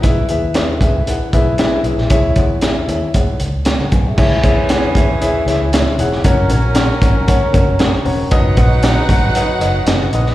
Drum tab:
CC |----------------|----------------|x---------------|----------------|
HH |x-x-x-x-x-x-x-x-|x-x-x-x-x-x-x-x-|--x-x-x-x-x-x-x-|x-x-x-x-x-x-x-o-|
SD |----o-------o--o|----o-------oo--|----o-----o-oo-o|----o-------oo--|
BD |o-----o---o-----|o-o-----o-----o-|o-o---o---------|o-----o-o-o-----|

CC |----------------|
HH |x-x-x-x-x-x-x-x-|
SD |----o-------oo-o|
BD |o-o---o---------|